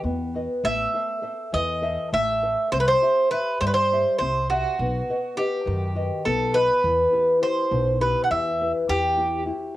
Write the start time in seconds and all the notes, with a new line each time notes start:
Already playing: F#4 B4 D#5
0.04 E2 B3
0.34 F#4 B4 D#5
0.64 A1 A3 E5
0.94 A4 C5 E5
1.22 A4 C5 E5
1.52 E2 E3 D#5
1.82 A4 C5 E5
2.13 A1 A3 E5
2.42 A4 C5 E5
2.72 C2 C4 C5
2.80 B4
2.88 C5
3.02 G4 C5 E5
3.31 G4 B4 C5 E5
3.61 G2 G3 C5
3.67 B4
3.74 C5
3.92 G4 C5 E5
4.19 C2 C4 C5
4.50 F#4 G4 C5 E5
4.79 B1 B3
5.09 F#4 B4 D#5
5.37 G4 B4 D#5 F#5
5.66 F#2 D#3
5.95 F#4 B4 D#5
6.25 B1 B3 A4
6.53 F#4 B4 D#5
6.83 E2 E3
7.12 E4 G4 B4
7.41 E4 G4 C5
7.71 B1 B2
8.00 E4 G4 B4
8.24 F#5
8.30 E2 E3 E5
8.60 E4 G4 B4
8.88 E2 E3 G4
9.17 E4 F#4 G4
9.45 E4 F#4 G4